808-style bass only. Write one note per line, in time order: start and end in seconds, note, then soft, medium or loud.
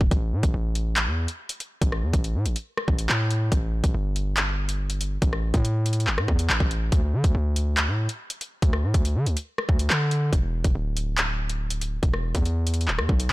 0.01 0.11 D1 loud
0.11 0.34 A1 loud
0.33 0.43 A2 loud
0.43 0.53 A1 loud
0.54 1.09 A1 loud
1.07 1.27 E2 loud
1.81 2.04 A1 loud
2.03 2.13 E2 loud
2.13 2.36 A1 loud
2.35 2.47 A2 loud
2.45 2.55 A1 medium
2.88 3.08 A1 loud
3.09 3.50 A2 loud
3.52 3.82 A1 loud
3.84 3.94 A1 loud
3.94 5.18 G1 loud
5.22 5.53 A1 loud
5.54 6.09 A2 loud
6.07 6.19 G1 loud
6.18 6.28 A2 loud
6.28 6.49 E2 loud
6.50 6.60 A1 loud
6.60 6.91 A1 loud
6.92 7.15 D2 loud
7.13 7.24 D3 loud
7.24 7.34 D2 loud
7.35 7.89 D2 loud
7.88 8.08 A2 medium
8.62 8.85 D2 loud
8.84 8.94 A2 loud
8.94 9.17 D2 loud
9.16 9.28 D3 loud
9.26 9.36 D2 loud
9.69 9.89 D2 loud
9.90 10.31 D3 loud
10.33 10.63 E1 loud
10.64 10.75 E1 loud
10.75 11.99 D1 loud
12.03 12.33 E1 loud
12.35 12.89 E2 loud
12.88 13.00 D1 loud
12.99 13.09 E2 loud
13.09 13.30 B1 loud